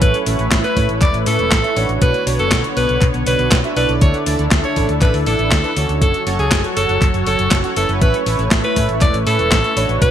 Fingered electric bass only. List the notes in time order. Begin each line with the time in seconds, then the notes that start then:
0.02 A1
0.27 A1
0.39 A1
0.52 A1
0.77 A2
0.89 A1
1.02 E1
1.14 A1
1.27 A2
1.39 E1
1.52 A1
1.77 A1
1.89 A1
2.02 B1
2.27 B1
2.39 F#1
2.52 B1
2.77 B1
2.89 B1
3.02 B1
3.14 B1
3.27 B1
3.39 B1
3.52 B1
3.76 B1
3.89 B1
4.02 D2
4.27 D2
4.39 D2
4.52 D2
4.77 A1
4.89 D2
5.02 A1
5.14 D2
5.27 A1
5.39 A1
5.52 D2
5.77 D2
5.89 D2
6.02 F#1
6.27 F#1
6.39 C#2
6.52 F#1
6.77 F#1
6.89 F#1
7.02 F#1
7.14 F#1
7.27 F#1
7.39 F#1
7.52 F#1
7.77 F#1
7.89 F#1
8.02 A1
8.26 A1
8.39 A1
8.52 A1
8.77 A2
8.89 A1
9.02 E1
9.14 A1
9.26 A2
9.39 E1
9.52 A1
9.77 A1
9.89 A1
10.02 B1